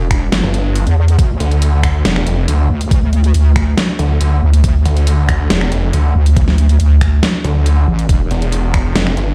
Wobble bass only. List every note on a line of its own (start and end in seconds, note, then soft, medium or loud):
0.00 0.31 E1 loud
0.32 0.42 G1 loud
0.87 1.17 E2 loud
1.19 1.38 D2 loud
2.70 2.89 D2 loud
2.91 3.33 D2 loud
3.34 3.76 D2 loud
4.42 4.62 D2 loud
4.64 4.84 D2 loud
6.15 6.35 D2 loud
6.37 6.78 D2 loud
6.80 7.21 D2 loud
7.88 8.08 A1 loud
8.09 8.29 E1 loud